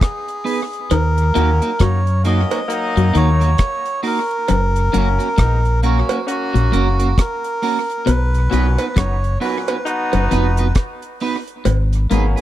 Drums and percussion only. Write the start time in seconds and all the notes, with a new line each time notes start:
0.01 kick, cross-stick, closed hi-hat
0.28 closed hi-hat
0.46 open hi-hat
0.73 closed hi-hat
0.91 closed hi-hat, cowbell
1.18 closed hi-hat
1.36 closed hi-hat
1.62 closed hi-hat
1.79 kick, cross-stick, closed hi-hat
2.07 closed hi-hat
2.25 closed hi-hat
2.51 closed hi-hat, cowbell
2.70 closed hi-hat
2.97 closed hi-hat
3.15 closed hi-hat
3.41 closed hi-hat
3.58 kick, cross-stick, closed hi-hat
3.86 closed hi-hat
4.03 open hi-hat
4.31 closed hi-hat
4.48 closed hi-hat, cowbell
4.76 closed hi-hat
4.94 closed hi-hat
5.20 closed hi-hat
5.38 kick, cross-stick, closed hi-hat
5.65 closed hi-hat
5.83 closed hi-hat
6.09 closed hi-hat, cowbell
6.28 closed hi-hat
6.55 closed hi-hat
6.73 closed hi-hat
7.00 closed hi-hat
7.18 kick, cross-stick, closed hi-hat
7.44 closed hi-hat
7.63 open hi-hat
7.90 closed hi-hat
8.07 closed hi-hat, cowbell
8.34 closed hi-hat
8.52 closed hi-hat
8.79 closed hi-hat, cowbell
8.96 kick, cross-stick, closed hi-hat
9.24 closed hi-hat
9.41 open hi-hat
9.68 closed hi-hat, cowbell
9.86 closed hi-hat
10.13 closed hi-hat, cowbell
10.31 closed hi-hat
10.57 closed hi-hat
10.75 kick, cross-stick, closed hi-hat
11.02 closed hi-hat
11.20 open hi-hat
11.47 closed hi-hat
11.65 closed hi-hat, cowbell
11.93 closed hi-hat
12.11 closed hi-hat
12.37 closed hi-hat